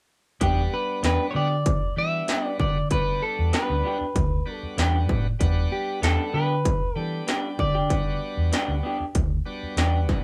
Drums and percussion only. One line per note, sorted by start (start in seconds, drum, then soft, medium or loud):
0.41 kick medium
0.41 closed hi-hat medium
1.04 snare loud
1.04 closed hi-hat medium
1.66 kick loud
1.66 closed hi-hat medium
2.28 snare loud
2.28 closed hi-hat medium
2.60 kick medium
2.91 kick medium
2.91 closed hi-hat medium
3.53 snare loud
3.53 closed hi-hat medium
4.16 kick loud
4.16 closed hi-hat medium
4.78 snare loud
4.78 closed hi-hat medium
5.09 kick medium
5.41 kick medium
5.41 closed hi-hat medium
6.03 snare loud
6.03 closed hi-hat medium
6.65 kick loud
6.65 closed hi-hat medium
7.28 snare loud
7.28 closed hi-hat medium
7.59 kick medium
7.90 kick medium
7.90 closed hi-hat medium
8.53 snare loud
8.53 closed hi-hat medium
9.15 kick loud
9.15 closed hi-hat medium
9.77 snare loud
9.77 closed hi-hat medium
10.09 kick medium
10.09 snare soft